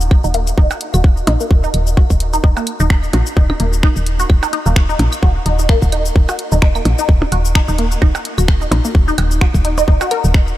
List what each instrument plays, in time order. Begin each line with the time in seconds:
Already playing: fm bass D#1
0.01 cabasa
0.11 kick, claves
0.24 fm bass D#1, synth arpeggio sound D#4, cabasa
0.34 synth arpeggio sound A#3, closed hi-hat
0.47 closed hi-hat, cabasa
0.58 fm bass D#1, synth arpeggio sound D#4, kick
0.71 cabasa, percussion blips
0.81 closed hi-hat
0.94 fm bass D#1, synth arpeggio sound F#4, cabasa, claves
1.04 kick
1.17 cabasa
1.27 fm bass A#1, synth arpeggio sound D#4, closed hi-hat, percussion blips
1.40 synth arpeggio sound A#3, cabasa
1.51 fm bass D#1, kick
1.64 synth arpeggio sound D#4, cabasa
1.74 fm bass D#1, closed hi-hat, claves
1.87 cabasa
1.97 synth arpeggio sound F#4, kick
2.10 fm bass D#1, kick, cabasa
2.20 closed hi-hat
2.33 synth arpeggio sound D#4, closed hi-hat, cabasa
2.44 fm bass D#1, synth arpeggio sound D#4, kick
2.57 synth arpeggio sound A#3, cabasa, percussion blips
2.67 closed hi-hat, claves
2.80 fm bass D#1, synth arpeggio sound D#4, cabasa
2.90 finger snap, kick
3.03 cabasa
3.13 fm bass A#1, synth arpeggio sound F#4, closed hi-hat, percussion blips
3.27 cabasa
3.37 fm bass D#1, synth arpeggio sound D#4, kick
3.50 synth arpeggio sound D#4, percussion blips, claves
3.60 fm bass D#1, synth arpeggio sound A#3, closed hi-hat
3.73 cabasa
3.83 synth arpeggio sound D#4, finger snap, kick
3.96 fm bass D#1, cabasa
4.06 closed hi-hat
4.20 synth arpeggio sound F#4, closed hi-hat, cabasa
4.30 fm bass D#1, kick, claves
4.43 synth arpeggio sound D#4, cabasa, percussion blips
4.53 synth arpeggio sound D#4, closed hi-hat
4.66 fm bass D#1, synth arpeggio sound A#3, cabasa
4.76 finger snap, kick
4.89 synth arpeggio sound D#4, cabasa
4.99 fm bass A#1, closed hi-hat, percussion blips
5.13 cabasa, claves
5.23 fm bass D#1, synth arpeggio sound F#4, kick
5.46 fm bass D#1, synth arpeggio sound D#4, closed hi-hat
5.59 synth arpeggio sound D#4, cabasa
5.69 synth arpeggio sound A#3, finger snap, kick
5.82 fm bass D#1, kick, cabasa
5.92 synth arpeggio sound D#4, closed hi-hat, claves
6.05 closed hi-hat, cabasa
6.16 fm bass D#1, kick
6.29 synth arpeggio sound F#4, cabasa, percussion blips
6.39 closed hi-hat
6.52 fm bass D#1, synth arpeggio sound D#4, cabasa
6.62 synth arpeggio sound D#4, finger snap, kick
6.75 synth arpeggio sound A#3, cabasa, claves
6.85 fm bass A#1, closed hi-hat, percussion blips
6.99 synth arpeggio sound D#4, cabasa
7.09 fm bass D#1, kick
7.22 percussion blips
7.32 fm bass D#1, synth arpeggio sound F#4, closed hi-hat
7.45 cabasa
7.55 synth arpeggio sound D#4, finger snap, kick, claves
7.68 fm bass D#1, synth arpeggio sound D#4, cabasa
7.78 synth arpeggio sound A#3, closed hi-hat
7.92 closed hi-hat, cabasa
8.02 fm bass D#1, synth arpeggio sound D#4, kick
8.15 cabasa, percussion blips
8.25 closed hi-hat
8.38 fm bass D#1, synth arpeggio sound F#4, cabasa, claves
8.48 finger snap, kick
8.61 synth arpeggio sound D#4, cabasa
8.71 fm bass A#1, synth arpeggio sound D#4, closed hi-hat, percussion blips
8.85 synth arpeggio sound A#3, cabasa
8.95 fm bass D#1, kick
9.08 synth arpeggio sound D#4, cabasa
9.18 fm bass D#1, closed hi-hat, claves, percussion blips
9.31 cabasa
9.41 synth arpeggio sound F#4, finger snap, kick
9.54 fm bass D#1, kick, cabasa
9.65 synth arpeggio sound D#4, closed hi-hat
9.78 synth arpeggio sound D#4, closed hi-hat, cabasa, percussion blips
9.88 fm bass D#1, synth arpeggio sound D#4, kick
10.01 synth arpeggio sound F#4, cabasa, percussion blips
10.11 synth arpeggio sound A#4, closed hi-hat, claves
10.24 fm bass D#1, cabasa
10.34 finger snap, kick, closed hi-hat
10.48 cabasa